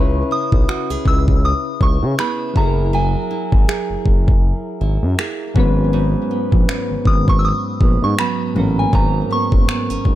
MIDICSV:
0, 0, Header, 1, 6, 480
1, 0, Start_track
1, 0, Key_signature, 5, "minor"
1, 0, Tempo, 750000
1, 1876, Time_signature, 4, 2, 24, 8
1, 6497, End_track
2, 0, Start_track
2, 0, Title_t, "Synth bell"
2, 0, Program_c, 0, 98
2, 0, Note_on_c, 0, 85, 83
2, 206, Note_on_c, 0, 87, 94
2, 215, Note_off_c, 0, 85, 0
2, 689, Note_on_c, 0, 88, 98
2, 695, Note_off_c, 0, 87, 0
2, 928, Note_on_c, 0, 87, 98
2, 929, Note_off_c, 0, 88, 0
2, 1146, Note_off_c, 0, 87, 0
2, 1169, Note_on_c, 0, 85, 89
2, 1408, Note_on_c, 0, 83, 89
2, 1409, Note_off_c, 0, 85, 0
2, 1646, Note_on_c, 0, 82, 80
2, 1649, Note_off_c, 0, 83, 0
2, 1886, Note_on_c, 0, 80, 81
2, 1888, Note_off_c, 0, 82, 0
2, 3295, Note_off_c, 0, 80, 0
2, 4526, Note_on_c, 0, 87, 92
2, 4664, Note_off_c, 0, 87, 0
2, 4668, Note_on_c, 0, 85, 85
2, 4721, Note_off_c, 0, 85, 0
2, 4730, Note_on_c, 0, 88, 70
2, 4762, Note_off_c, 0, 88, 0
2, 4767, Note_on_c, 0, 87, 90
2, 5144, Note_on_c, 0, 85, 78
2, 5152, Note_off_c, 0, 87, 0
2, 5243, Note_off_c, 0, 85, 0
2, 5245, Note_on_c, 0, 83, 83
2, 5627, Note_on_c, 0, 80, 78
2, 5631, Note_off_c, 0, 83, 0
2, 5715, Note_off_c, 0, 80, 0
2, 5727, Note_on_c, 0, 82, 87
2, 5945, Note_off_c, 0, 82, 0
2, 5968, Note_on_c, 0, 85, 82
2, 6497, Note_off_c, 0, 85, 0
2, 6497, End_track
3, 0, Start_track
3, 0, Title_t, "Nylon-string guitar"
3, 0, Program_c, 1, 24
3, 0, Note_on_c, 1, 49, 77
3, 0, Note_on_c, 1, 64, 56
3, 0, Note_on_c, 1, 68, 62
3, 196, Note_off_c, 1, 64, 0
3, 198, Note_on_c, 1, 64, 56
3, 435, Note_off_c, 1, 68, 0
3, 438, Note_on_c, 1, 66, 63
3, 578, Note_off_c, 1, 66, 0
3, 578, Note_on_c, 1, 68, 56
3, 1155, Note_off_c, 1, 64, 0
3, 1158, Note_on_c, 1, 64, 57
3, 1396, Note_on_c, 1, 59, 61
3, 1397, Note_off_c, 1, 68, 0
3, 1398, Note_off_c, 1, 64, 0
3, 1400, Note_on_c, 1, 64, 65
3, 1404, Note_on_c, 1, 68, 69
3, 1637, Note_on_c, 1, 54, 77
3, 1692, Note_off_c, 1, 59, 0
3, 1693, Note_off_c, 1, 49, 0
3, 1873, Note_off_c, 1, 54, 0
3, 1876, Note_on_c, 1, 54, 80
3, 1895, Note_off_c, 1, 64, 0
3, 1895, Note_off_c, 1, 68, 0
3, 2116, Note_on_c, 1, 64, 58
3, 2357, Note_on_c, 1, 68, 61
3, 3070, Note_off_c, 1, 64, 0
3, 3078, Note_on_c, 1, 64, 55
3, 3313, Note_off_c, 1, 64, 0
3, 3316, Note_on_c, 1, 58, 62
3, 3321, Note_on_c, 1, 64, 61
3, 3322, Note_off_c, 1, 68, 0
3, 3325, Note_on_c, 1, 68, 69
3, 3555, Note_on_c, 1, 44, 80
3, 3614, Note_off_c, 1, 64, 0
3, 3788, Note_off_c, 1, 44, 0
3, 3795, Note_on_c, 1, 44, 83
3, 3815, Note_off_c, 1, 54, 0
3, 3815, Note_off_c, 1, 58, 0
3, 4037, Note_on_c, 1, 59, 61
3, 4277, Note_on_c, 1, 61, 61
3, 4994, Note_off_c, 1, 59, 0
3, 4996, Note_on_c, 1, 59, 60
3, 5238, Note_on_c, 1, 54, 61
3, 5239, Note_off_c, 1, 59, 0
3, 5241, Note_on_c, 1, 59, 64
3, 5242, Note_off_c, 1, 61, 0
3, 5244, Note_on_c, 1, 61, 69
3, 5257, Note_off_c, 1, 68, 0
3, 5469, Note_off_c, 1, 54, 0
3, 5476, Note_on_c, 1, 54, 63
3, 5708, Note_off_c, 1, 44, 0
3, 5715, Note_on_c, 1, 44, 80
3, 5953, Note_off_c, 1, 59, 0
3, 5956, Note_on_c, 1, 59, 59
3, 6194, Note_off_c, 1, 61, 0
3, 6196, Note_off_c, 1, 59, 0
3, 6196, Note_on_c, 1, 59, 60
3, 6335, Note_off_c, 1, 59, 0
3, 6335, Note_on_c, 1, 61, 58
3, 6497, Note_off_c, 1, 44, 0
3, 6497, Note_off_c, 1, 54, 0
3, 6497, Note_off_c, 1, 61, 0
3, 6497, End_track
4, 0, Start_track
4, 0, Title_t, "Synth keys"
4, 0, Program_c, 2, 88
4, 0, Note_on_c, 2, 49, 62
4, 0, Note_on_c, 2, 61, 57
4, 0, Note_on_c, 2, 64, 60
4, 0, Note_on_c, 2, 71, 68
4, 90, Control_c, 2, 64, 127
4, 1605, Note_off_c, 2, 49, 0
4, 1611, Note_off_c, 2, 61, 0
4, 1616, Note_off_c, 2, 64, 0
4, 1622, Note_off_c, 2, 71, 0
4, 1625, Note_on_c, 2, 54, 63
4, 1637, Note_on_c, 2, 64, 58
4, 1645, Control_c, 2, 64, 0
4, 1646, Note_on_c, 2, 68, 57
4, 1658, Note_on_c, 2, 69, 54
4, 1695, Note_off_c, 2, 69, 0
4, 1700, Note_on_c, 2, 70, 72
4, 1753, Control_c, 2, 64, 127
4, 3525, Note_off_c, 2, 54, 0
4, 3531, Note_off_c, 2, 64, 0
4, 3536, Note_off_c, 2, 68, 0
4, 3548, Note_on_c, 2, 44, 72
4, 3556, Note_on_c, 2, 54, 74
4, 3562, Note_off_c, 2, 70, 0
4, 3564, Note_on_c, 2, 59, 70
4, 3565, Control_c, 2, 64, 0
4, 3573, Note_on_c, 2, 61, 70
4, 3581, Note_on_c, 2, 71, 84
4, 3667, Control_c, 2, 64, 127
4, 5446, Note_off_c, 2, 44, 0
4, 5451, Note_off_c, 2, 54, 0
4, 5454, Note_off_c, 2, 59, 0
4, 5459, Note_off_c, 2, 61, 0
4, 5463, Note_off_c, 2, 71, 0
4, 5465, Note_on_c, 2, 44, 66
4, 5474, Note_on_c, 2, 54, 57
4, 5483, Note_on_c, 2, 58, 58
4, 5492, Note_on_c, 2, 61, 61
4, 5499, Note_on_c, 2, 70, 69
4, 6497, Note_off_c, 2, 44, 0
4, 6497, Note_off_c, 2, 54, 0
4, 6497, Note_off_c, 2, 58, 0
4, 6497, Note_off_c, 2, 61, 0
4, 6497, Note_off_c, 2, 70, 0
4, 6497, End_track
5, 0, Start_track
5, 0, Title_t, "Analog synth bass"
5, 0, Program_c, 3, 38
5, 0, Note_on_c, 3, 37, 97
5, 147, Note_off_c, 3, 37, 0
5, 335, Note_on_c, 3, 35, 94
5, 415, Note_off_c, 3, 35, 0
5, 577, Note_on_c, 3, 37, 47
5, 617, Note_off_c, 3, 37, 0
5, 677, Note_on_c, 3, 37, 94
5, 977, Note_off_c, 3, 37, 0
5, 1158, Note_on_c, 3, 37, 89
5, 1268, Note_off_c, 3, 37, 0
5, 1296, Note_on_c, 3, 49, 100
5, 1376, Note_off_c, 3, 49, 0
5, 1638, Note_on_c, 3, 30, 102
5, 2018, Note_off_c, 3, 30, 0
5, 2256, Note_on_c, 3, 32, 93
5, 2336, Note_off_c, 3, 32, 0
5, 2497, Note_on_c, 3, 30, 48
5, 2537, Note_off_c, 3, 30, 0
5, 2597, Note_on_c, 3, 30, 87
5, 2897, Note_off_c, 3, 30, 0
5, 3077, Note_on_c, 3, 32, 81
5, 3187, Note_off_c, 3, 32, 0
5, 3216, Note_on_c, 3, 42, 95
5, 3296, Note_off_c, 3, 42, 0
5, 3557, Note_on_c, 3, 32, 90
5, 3937, Note_off_c, 3, 32, 0
5, 4176, Note_on_c, 3, 34, 85
5, 4255, Note_off_c, 3, 34, 0
5, 4417, Note_on_c, 3, 32, 48
5, 4457, Note_off_c, 3, 32, 0
5, 4515, Note_on_c, 3, 32, 89
5, 4816, Note_off_c, 3, 32, 0
5, 4997, Note_on_c, 3, 34, 79
5, 5107, Note_off_c, 3, 34, 0
5, 5135, Note_on_c, 3, 44, 101
5, 5215, Note_off_c, 3, 44, 0
5, 5477, Note_on_c, 3, 33, 80
5, 5667, Note_off_c, 3, 33, 0
5, 5716, Note_on_c, 3, 32, 102
5, 5906, Note_off_c, 3, 32, 0
5, 6094, Note_on_c, 3, 30, 92
5, 6174, Note_off_c, 3, 30, 0
5, 6334, Note_on_c, 3, 32, 43
5, 6375, Note_off_c, 3, 32, 0
5, 6433, Note_on_c, 3, 32, 93
5, 6497, Note_off_c, 3, 32, 0
5, 6497, End_track
6, 0, Start_track
6, 0, Title_t, "Drums"
6, 335, Note_on_c, 9, 36, 85
6, 399, Note_off_c, 9, 36, 0
6, 442, Note_on_c, 9, 26, 95
6, 506, Note_off_c, 9, 26, 0
6, 675, Note_on_c, 9, 36, 80
6, 739, Note_off_c, 9, 36, 0
6, 819, Note_on_c, 9, 36, 88
6, 883, Note_off_c, 9, 36, 0
6, 1157, Note_on_c, 9, 36, 90
6, 1221, Note_off_c, 9, 36, 0
6, 1400, Note_on_c, 9, 26, 111
6, 1464, Note_off_c, 9, 26, 0
6, 1637, Note_on_c, 9, 36, 100
6, 1701, Note_off_c, 9, 36, 0
6, 2255, Note_on_c, 9, 36, 85
6, 2319, Note_off_c, 9, 36, 0
6, 2362, Note_on_c, 9, 26, 96
6, 2426, Note_off_c, 9, 26, 0
6, 2596, Note_on_c, 9, 36, 83
6, 2660, Note_off_c, 9, 36, 0
6, 2739, Note_on_c, 9, 36, 96
6, 2803, Note_off_c, 9, 36, 0
6, 3320, Note_on_c, 9, 26, 106
6, 3384, Note_off_c, 9, 26, 0
6, 3557, Note_on_c, 9, 36, 99
6, 3621, Note_off_c, 9, 36, 0
6, 4175, Note_on_c, 9, 36, 82
6, 4239, Note_off_c, 9, 36, 0
6, 4281, Note_on_c, 9, 26, 95
6, 4345, Note_off_c, 9, 26, 0
6, 4515, Note_on_c, 9, 36, 85
6, 4579, Note_off_c, 9, 36, 0
6, 4659, Note_on_c, 9, 36, 94
6, 4723, Note_off_c, 9, 36, 0
6, 4996, Note_on_c, 9, 36, 89
6, 5060, Note_off_c, 9, 36, 0
6, 5239, Note_on_c, 9, 26, 111
6, 5303, Note_off_c, 9, 26, 0
6, 5715, Note_on_c, 9, 36, 102
6, 5779, Note_off_c, 9, 36, 0
6, 6093, Note_on_c, 9, 36, 84
6, 6157, Note_off_c, 9, 36, 0
6, 6200, Note_on_c, 9, 26, 96
6, 6264, Note_off_c, 9, 26, 0
6, 6433, Note_on_c, 9, 36, 85
6, 6497, Note_off_c, 9, 36, 0
6, 6497, End_track
0, 0, End_of_file